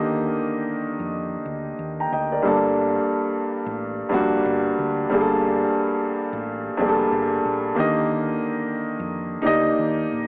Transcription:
Already playing: D#2 D3 D#3 A#3 D#4 G4 D5 D#5
1.00 F2
1.46 D2
1.79 D#2
2.00 G5 A#5
2.12 D2 D#5 G5
2.32 A#4 D5
2.42 G1 G2 G3 A#3 D4
2.47 A4
3.66 A1
4.09 F1 G2 G3 A#3 D4
4.14 F#4
4.46 G1
4.79 D2
5.10 G1 G2 G3 A#3 D4
5.14 G#4
5.21 A4
6.33 A1
6.77 F1 G2 G3 A#3 D4
6.82 G#4
6.89 A4
7.12 G1
7.45 A#1
7.75 D#2 D3 D#3 A#3 G4
7.80 D#5
9.00 F2
9.42 D2 A#3 D#4 G4 D5
9.46 D#5
9.79 D#2
10.12 A#1

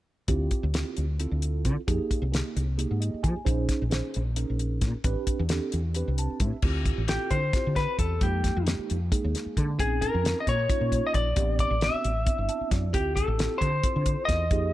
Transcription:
0.28 D2 C4 E4 F4 G4, kick, closed hi-hat
0.51 kick, closed hi-hat
0.63 D2
0.74 C4 E4 F4 G4, snare, closed hi-hat
0.97 D2, closed hi-hat
1.20 C4 E4 F4 A4, closed hi-hat
1.31 D2
1.42 closed hi-hat
1.65 D3, kick, closed hi-hat
1.77 muted fretless electric bass stroke
1.87 F2 A#3 D#4 G4 G#4, kick, closed hi-hat
2.11 muted fretless electric bass stroke, kick, closed hi-hat
2.22 C2
2.32 A#3 D#4 G4 G#4, snare, closed hi-hat
2.56 C2, closed hi-hat
2.78 A#3 D#4 G4 G#4, closed hi-hat
2.91 G#2
3.00 D#5, closed hi-hat
3.14 muted fretless electric bass stroke
3.23 F3 G#5, kick, closed hi-hat
3.36 muted fretless electric bass stroke
3.45 A#1 C#4 D#4 G#4 C5, kick, closed hi-hat
3.69 kick, snare, closed hi-hat
3.82 A#1
3.90 C#4 D#4 G#4 C5, snare, closed hi-hat
4.14 A#1, closed hi-hat
4.36 C#4 D#4 G#4 A#4, closed hi-hat
4.50 A#1
4.59 closed hi-hat
4.81 A#2, kick, snare, closed hi-hat
4.95 muted fretless electric bass stroke
5.04 A1 C4 D4 G4 B4, kick, closed hi-hat
5.27 muted fretless electric bass stroke, kick, closed hi-hat
5.39 E2
5.49 C4 D4 G4 A4, snare, closed hi-hat
5.72 E2, closed hi-hat
5.95 C4 D4 G4 B4, closed hi-hat
6.08 C2
6.18 A5, closed hi-hat
6.30 muted fretless electric bass stroke
6.40 A2 E5, kick, closed hi-hat
6.53 muted fretless electric bass stroke
6.62 D2 C4 E4 F4 G4, kick, crash
6.86 kick, closed hi-hat
6.98 A1
7.08 C4 E4 F4 G4 A4, snare, closed hi-hat
7.31 D3 C5, kick, closed hi-hat
7.53 C4 E4 F4 G4, kick, snare, closed hi-hat
7.67 D3
7.76 B4, kick, snare, closed hi-hat
7.99 E2 A4, kick, closed hi-hat
8.21 F2 G#3 A#3 D#4 G4, kick, closed hi-hat
8.44 kick, snare, closed hi-hat
8.56 F2
8.67 G#3 A#3 D#4 G4, snare, closed hi-hat
8.79 muted fretless electric bass stroke
8.90 F2, closed hi-hat
9.11 G#3 A#3 D#4 G#4, kick, closed hi-hat
9.24 D#2
9.35 snare, closed hi-hat
9.46 muted fretless electric bass stroke
9.57 D3, kick, closed hi-hat
9.78 A#1 C4 C#4 D#4 G#4, kick, closed hi-hat
10.01 A#4, kick, closed hi-hat
10.14 F2
10.23 C4 C#4 D#4 F4, snare, closed hi-hat
10.40 D#5
10.47 A#2 C#5, kick, closed hi-hat
10.69 A#3 C#4 D#4 F4, kick, closed hi-hat
10.81 A#2
10.92 kick, closed hi-hat
11.07 D#5
11.14 A#1 D5, kick, closed hi-hat
11.36 A1 B3 C4 D4 G4, kick, closed hi-hat
11.59 D5, kick, closed hi-hat
11.70 A1
11.81 B3 C4 D4 F#4 E5, snare, closed hi-hat
12.04 A1, closed hi-hat
12.25 B3 C4 D4 E4, kick, closed hi-hat
12.38 G1
12.49 A5, closed hi-hat
12.61 muted fretless electric bass stroke
12.71 F#2 D5, kick, snare, closed hi-hat
12.93 D2 C4 E4 F4 G4, kick, closed hi-hat
13.16 A4, kick, closed hi-hat
13.28 A1
13.38 C4 E4 F4 G4, snare, closed hi-hat
13.58 D3 C5, kick, closed hi-hat
13.83 C4 E4 F4 A4, kick, closed hi-hat
13.96 D3
14.06 kick, closed hi-hat
14.25 E2 D#5, kick, closed hi-hat
14.30 snare
14.51 F2 A#3 D#4 G4 G#4, kick, closed hi-hat

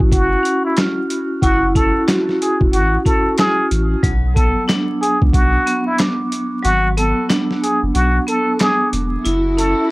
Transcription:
Already playing: C#4 E4 F#4
0.00 A1, kick
0.12 F#1 F#4, kick, closed hi-hat
0.43 C#4, closed hi-hat
0.65 E4
0.77 F6, snare, clap, closed hi-hat
1.10 closed hi-hat
1.42 F#1 E4 F#4, kick, closed hi-hat
1.75 C#4 A4, kick, closed hi-hat
2.08 F#4, snare, clap, closed hi-hat
2.29 snare
2.42 G#4, closed hi-hat
2.61 E1, kick
2.73 A1 F#4, closed hi-hat
3.05 C#4 A4, kick, closed hi-hat
3.38 G#4 F6, snare, clap, closed hi-hat
3.71 A1, closed hi-hat
4.03 B1 F#3, kick, closed hi-hat
4.35 B3 A4, kick, closed hi-hat
4.68 D4, snare, clap, closed hi-hat
5.01 G#4, closed hi-hat
5.22 C#2, kick
5.33 B1 F#4, kick, closed hi-hat
5.66 B3, closed hi-hat
5.87 E4
5.98 D6, snare, clap, closed hi-hat
6.32 closed hi-hat
6.63 G#1 F#3 F#4, closed hi-hat
6.97 B3 A4, closed hi-hat
7.29 D4, snare, clap, closed hi-hat
7.51 snare
7.63 G#4, closed hi-hat
7.83 F#1
7.94 B1 F#4, closed hi-hat
8.27 B3 A4, closed hi-hat
8.59 G#4 D6, snare, clap, closed hi-hat
8.93 E1, closed hi-hat
9.23 F#1 E4 F#4, closed hi-hat
9.57 C#4 A4, closed hi-hat

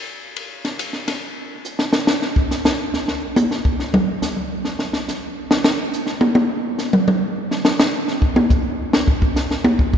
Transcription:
0.36 ride
0.65 snare, ride
0.79 hi-hat pedal, ride
0.93 snare
1.08 snare, ride
1.65 hi-hat pedal
1.79 snare
1.93 snare
2.07 snare
2.22 snare
2.36 kick
2.51 snare, hi-hat pedal
2.65 snare
2.94 snare
3.08 snare
3.36 hi-hat pedal, high tom
3.51 snare
3.65 kick
3.80 snare
3.94 mid tom
4.22 snare, hi-hat pedal
4.37 mid tom
4.65 snare
4.79 snare
4.93 snare
5.08 snare, hi-hat pedal
5.51 snare
5.64 snare
5.93 hi-hat pedal
6.07 snare
6.21 high tom
6.35 high tom
6.79 snare, hi-hat pedal
6.93 mid tom
7.08 mid tom
7.51 snare
7.65 snare, hi-hat pedal
7.80 snare
8.08 snare
8.22 kick
8.36 high tom
8.50 kick, hi-hat pedal
8.93 snare
9.08 kick
9.22 kick
9.36 snare, hi-hat pedal
9.51 snare
9.64 high tom
9.79 kick
9.93 kick

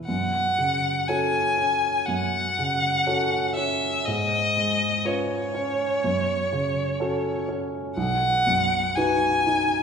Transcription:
Already playing: E2 B2 E4 G#4 B4
0.08 F#2 F#5
0.58 C#3
1.08 C#4 F#4 A4 G#5
1.58 C#4
2.05 F#2 F#5
2.59 C#3
3.07 C#4 F#4 A4
3.55 C#4 E5
4.05 G#2 D#5
4.57 G#3
5.05 C#4 F4 B4 C#5
5.54 C#4
6.04 F#2
6.53 C#3
7.00 C#4 F#4 A4
7.49 C#4
7.97 B1 F#5
8.46 F#2
8.95 D#4 F#4 B4 G#5
9.47 D#4

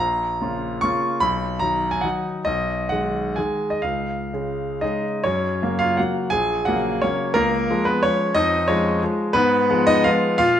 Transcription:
Already playing: A#1 A#5
0.41 C#3 A#3 F4
0.81 C#3 A#3 F4 C#6
1.20 B1 B5
1.59 D#3 F#3 D#4 A#5
1.91 G#5
2.01 D#3 F#3 D#4 F#5
2.45 B1 D#5
2.89 D#3 G#3 G#4 F#5
3.36 D#3 G#3 G#4 G#5
3.70 D#5
3.82 C#2 F5
4.34 C#3 G#3 G#4
4.81 C#3 G#3 D#4 G#4 D#5
5.24 F#2 C#4 C#5
5.62 C#3 F#3 A#3
5.79 F4 F5
5.97 C#3 F#3 A#3 F#4 F#5
6.30 A#1 G#4 G#5
6.65 C#3 F#3 A#3 F#4 F#5
7.02 C#3 F#3 A#3 C#4 C#5
7.34 C#2 A#3 A#4
7.70 F3 G#3
7.85 B3 B4
8.03 F3 G#3 C#4 C#5
8.35 F2 D#4 D#5
8.68 F3 G#3 C#4 C#5
9.03 F3 G#3
9.33 G#2 B3 B4
9.70 F3 G#3 B3
9.87 D#4 D#5
10.04 F3 G#3 B3 F4 F5
10.38 A#2 F4 F5

